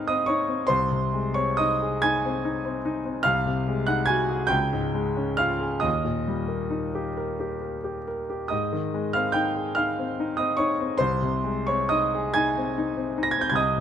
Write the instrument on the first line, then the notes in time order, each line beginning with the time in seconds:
grand piano
Already playing: G#2 D#3 G#3 C4 D#4 G#4 D#5 F5 G5 D#6 F6 G6
0.07 C4 D#5 D#6
0.26 D#4 C#5 C#6
0.48 C4
0.67 C2 C5 C6
0.92 C3
1.13 G#3
1.34 C4 C#5 C#6
1.57 D#4 D#5 D#6
1.82 G#4
2.02 D#4 G#5 G#6
2.25 C4
2.45 D#4
2.65 C4
2.85 D#4
3.05 C4
3.23 C2 F5 F6
3.46 C3
3.68 G#3
3.87 D#4 F#5 F#6
4.06 F#4 G#5 G#6
4.29 G#4
4.47 C#2 G5 G6
4.73 G#2
4.94 G#3
5.17 C#4
5.37 F4 F5 F6
5.61 G#4
5.80 D#2 D#5 D#6
6.05 A#2
6.27 G3
6.48 A#3
6.70 D#4
6.95 G4
7.17 A#4
7.40 G4
7.62 A#4
7.84 G4
8.08 A#4
8.30 G4
8.48 G#2 D#5 D#6
8.73 D#3
8.94 G#3
9.13 C4 F5 F6
9.32 D#4 G5 G6
9.56 G#4
9.75 D#4 F5 F6
9.99 C4
10.20 D#4
10.37 C4 D#5 D#6
10.57 D#4 C#5 C#6
10.80 C4
10.98 C2 C5 C6
11.22 C3
11.44 G#3
11.67 C4 C#5 C#6
11.89 D#4 D#5 D#6
12.15 G#4
12.34 D#4 G#5 G#6
12.57 C4
12.78 D#4
12.97 C4
13.18 D#4
13.23 A#6
13.31 G#6
13.38 C4 G6
13.50 C2 G#6
13.55 D#5 D#6